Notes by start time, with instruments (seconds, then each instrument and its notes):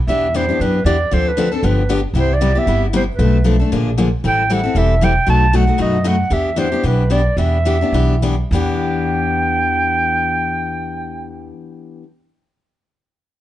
0.07 upright bass E2, steel-string acoustic guitar E3 B3 D4 G4, clarinet E5
0.34 steel-string acoustic guitar E3 B3 D4 G4, clarinet C5
0.49 steel-string acoustic guitar B3 D4 G4
0.60 upright bass F#2, steel-string acoustic guitar E3 B3 D4 G4, clarinet B4
0.84 upright bass E2, steel-string acoustic guitar E3 B3 D4 G4, clarinet D5
1.11 upright bass D2, steel-string acoustic guitar D3 F3 C4 D4 A4, clarinet C5
1.28 clarinet B4
1.37 steel-string acoustic guitar D3 F3 C4 D4 A4
1.52 steel-string acoustic guitar C4 D4 A4, clarinet A4
1.63 upright bass G1, steel-string acoustic guitar D3 F3 B3 D4 G4, clarinet B4
1.89 steel-string acoustic guitar D3 F3 B3 D4 G4
2.14 upright bass C2, steel-string acoustic guitar C3 G3 B3 E4 G4
2.18 clarinet C5
2.33 clarinet D5
2.41 steel-string acoustic guitar C3 G3 B3 E4 G4
2.55 steel-string acoustic guitar B3 E4 G4, clarinet E5
2.67 upright bass G1, steel-string acoustic guitar C3 G3 B3 E4 G4
2.93 steel-string acoustic guitar C3 G3 B3 E4 G4, clarinet C5
3.13 clarinet B4
3.19 upright bass B1, steel-string acoustic guitar B2 F3 A3 D4 A4
3.44 steel-string acoustic guitar B2 F3 A3 D4 A4
3.60 steel-string acoustic guitar A3 D4 A4
3.72 upright bass A#1, steel-string acoustic guitar D3 F3 A#3 D4 G#4
3.98 steel-string acoustic guitar D3 F3 A#3 D4 G#4
4.24 upright bass A1, steel-string acoustic guitar E3 G3 C4 E4 A4, clarinet G5
4.50 steel-string acoustic guitar E3 G3 C4 E4 A4, clarinet F#5
4.63 steel-string acoustic guitar C4 E4 A4
4.75 upright bass E1, steel-string acoustic guitar E3 G3 C4 E4 A4, clarinet E5
5.01 steel-string acoustic guitar E3 G3 C4 E4 A4, clarinet G5
5.26 upright bass B1, steel-string acoustic guitar B2 F#3 A3 D#4 F#4, clarinet A5
5.53 steel-string acoustic guitar B2 F#3 A3 D#4 F#4, clarinet F#5
5.67 steel-string acoustic guitar A3 D#4 F#4
5.78 upright bass F#2, steel-string acoustic guitar B2 F#3 A3 D#4 F#4, clarinet D#5
6.04 steel-string acoustic guitar B2 F#3 A3 D#4 F#4, clarinet F#5
6.30 upright bass E2, steel-string acoustic guitar E3 B3 D4 G4, clarinet E5
6.56 steel-string acoustic guitar E3 B3 D4 G4, clarinet C5
6.72 steel-string acoustic guitar B3 D4 G4
6.83 upright bass B1, steel-string acoustic guitar E3 B3 D4 G4, clarinet B4
7.10 steel-string acoustic guitar E3 B3 D4 G4, clarinet D5
7.37 upright bass E2, steel-string acoustic guitar E3 B3 D4 G4, clarinet E5
7.65 steel-string acoustic guitar E3 B3 D4 G4
7.81 steel-string acoustic guitar B3 D4 G4
7.92 upright bass B1, steel-string acoustic guitar E3 B3 D4 G4
8.22 steel-string acoustic guitar E3 B3 D4 G4
8.51 upright bass E2, steel-string acoustic guitar E3 B3 D4, clarinet G5
8.55 steel-string acoustic guitar G4